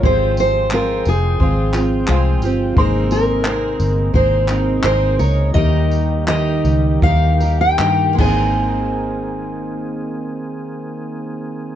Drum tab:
CC |--------|--------|-------x|--------|
TB |-x-x-x-x|-x-x-x-x|-x-x-x--|--------|
CP |--x--xx-|--x--xx-|--x---x-|--------|
BD |o---o---|o---o---|o---o--o|--------|